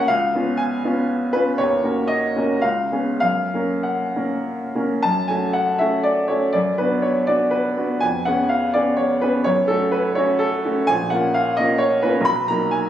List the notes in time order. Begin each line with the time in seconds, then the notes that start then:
Already playing: F#2 A#3 C#4 F#4 C#5 F#5 G#5 A#5
0.08 C#2 F5
0.35 B3 C#4 F4
0.57 G#5
0.85 B3 C#4 F4
1.33 B3 C#4 F4 B4
1.58 D#2 C#5
1.83 A#3 C#4 F#4
2.07 D#5
2.36 A#3 C#4 F#4
2.61 C#2 F5
2.92 B3 C#4 G#4
3.20 F#2 F5
3.54 A#3 C#4 A#4
3.83 F#5
4.16 A#3 C#4 A#4
4.75 A#3 C#4 A#4
5.03 F#2 A5
5.28 A3 C#4 F#4 G#5
5.53 F#5
5.78 A3 C#4 F#4 E5
6.03 D5
6.28 A3 C#4 F#4 C#5
6.53 F#2 D5
6.78 B3 D4 F#4 B4
7.02 C#5
7.27 B3 D4 F#4 D5
7.51 B4
7.77 B3 D4 F#4
8.00 F2 G#5
8.25 B3 C#4 G#4 F#5
8.49 F5
8.74 B3 C#4 G#4 D5
8.97 C#5
9.21 B3 C#4 G#4 B4
9.44 F#2 C#5
9.68 A3 C#4 F#4 A4
9.92 B4
10.15 A3 C#4 F#4 C#5
10.39 A4
10.65 A3 C#4 F#4
10.87 A#1 G#5
11.10 A#3 C#4 F4 F#5
11.34 F5
11.57 A#3 C#4 F4 D#5
11.78 C#5
12.02 A#3 C#4 F4 B4
12.21 B1
12.25 B5
12.48 F#3 A#3 D#4 A#5
12.71 G#5